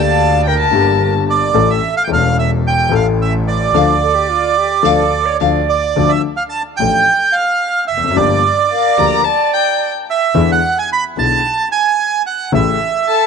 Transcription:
Already playing: double bass D2, grand piano D2 D3 A3 A#3 G4, flute D5, bandoneon A5
0.05 violin F5
0.46 flute A#4, violin G5
0.60 violin A5
0.71 grand piano G1 G2 D3 G3 A#3 G4, double bass G1
1.30 bandoneon D5
1.54 grand piano A1 A2 E3 A3 C#4 A4, double bass A1
1.70 bandoneon E5
1.97 bandoneon F5
2.04 grand piano E3, bandoneon G5
2.09 grand piano E1 E2 A3 C#4 A4, double bass E1
2.13 bandoneon F5
2.39 bandoneon E5
2.67 bandoneon G5
2.89 double bass A1, grand piano A1 A2 E3 A3 C#4
2.94 grand piano A4, bandoneon F5
3.22 bandoneon E5
3.48 bandoneon D5
3.74 double bass D2, grand piano D3 F3 A3, violin F5
4.02 flute A4
4.15 flute G4
4.29 flute F4
4.57 flute G4
4.83 double bass D2, grand piano D3 F3 A3, flute A4, violin F5
5.26 flute C#5
5.39 double bass D2, grand piano D3 F3 A3, flute D5, violin F5
5.69 bandoneon D5
5.96 grand piano D2 D3 F3 A3 D4 A4, double bass D2
6.09 bandoneon E5
6.37 bandoneon F5
6.49 bandoneon A5
6.77 double bass A1, grand piano A1 A2 F3 A3 D4 A4, bandoneon G5
7.33 bandoneon F5
7.88 double bass F1, bandoneon E5
7.97 grand piano E2
8.04 grand piano F2
8.11 grand piano F#2
8.16 double bass G1, grand piano G1 G2 F3 A#3 D4 G4, bandoneon D5
8.71 flute A#4, violin F5
8.98 double bass D2, grand piano D2 D3 F3 A#3 D4 G4, violin A#5
9.24 flute D5, violin A5
9.53 violin G5
10.10 bandoneon E5
10.34 double bass E2, grand piano E2 D3 E3 G#3 B3 E4
10.52 bandoneon F#5
10.79 bandoneon G#5
10.93 bandoneon B5
11.17 double bass B1, grand piano B1 B2 D3 G#3 B3 E4, bandoneon A5
11.72 bandoneon G#5
12.26 bandoneon F#5
12.52 grand piano A1 A2 C#3 E3 A3 E4, double bass A1, bandoneon E5
13.07 flute A4, violin A5

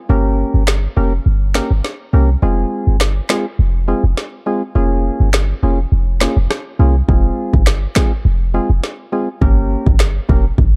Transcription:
0.09 808-style bass G1, synth stab A#3 C#4 G4 A#4
0.54 808-style bass G1
0.67 finger snap, snare
0.97 808-style bass F1, synth stab A#3 C#4 G4 A#4
1.26 808-style bass G1
1.54 synth stab A#3 C#4 G4 A#4, finger snap, snare
1.71 808-style bass G1
1.84 snare
2.13 808-style bass C2, synth stab A#3 C#4 G4 A#4
2.42 808-style bass F1, synth stab G#3 C4 F4 G#4
2.87 808-style bass G1
3.00 finger snap, snare
3.29 synth stab G#3 C4 F4 G#4, finger snap, snare
3.59 808-style bass F1
3.88 synth stab G#3 C4 F4 G#4
4.04 808-style bass F1
4.17 snare
4.46 synth stab G#3 C4 F4 G#4
4.75 808-style bass F1, synth stab A#3 C#4 F4 G#4
5.20 808-style bass G1
5.33 finger snap, snare
5.63 808-style bass F1, synth stab A#3 C#4 F4 G#4
5.92 808-style bass F1
6.20 synth stab A#3 C#4 F4 G#4, finger snap, snare
6.37 808-style bass F1
6.51 cross-stick, snare
6.79 808-style bass C2, synth stab A#3 C#4 F4 G#4
7.08 808-style bass F1, synth stab G#3 C4 F4 G#4, kick
7.53 808-style bass G1, kick
7.66 finger snap, snare
7.95 synth stab G#3 C4 F4 G#4, finger snap, kick, snare
8.25 808-style bass F1
8.54 synth stab G#3 C4 F4 G#4
8.70 808-style bass F1
8.84 snare
9.12 synth stab G#3 C4 F4 G#4
9.41 808-style bass G1, synth stab A#3 C#4 G4 A#4, kick
9.86 808-style bass G1, kick
9.99 finger snap, snare
10.29 808-style bass F1, synth stab A#3 C#4 G4 A#4, kick
10.58 808-style bass G1, kick

